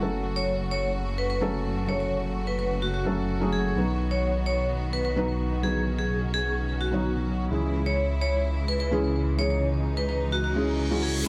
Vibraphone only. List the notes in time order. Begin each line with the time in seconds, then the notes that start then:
0.36 C#5
0.71 C#5
1.18 B4
1.30 B4
1.89 C#5
2.00 C#5
2.47 B4
2.59 B4
2.82 F#4
2.94 F#4
3.53 G#4
4.11 C#5
4.46 C#5
4.93 B4
5.05 B4
5.63 G#4
5.99 G#4
6.34 G#4
6.81 F#4
7.86 C#5
8.21 C#5
8.68 B4
8.80 B4
9.39 C#5
9.50 C#5
9.97 B4
10.09 B4
10.32 F#4
10.44 F#4
11.03 G#4